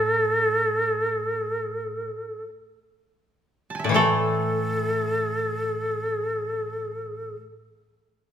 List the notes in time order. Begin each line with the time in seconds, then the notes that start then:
Already playing: A2 A4
3.70 A5
3.75 G#5
3.79 E5
3.84 A2 D5
3.89 E3 C#5
3.94 A3 A4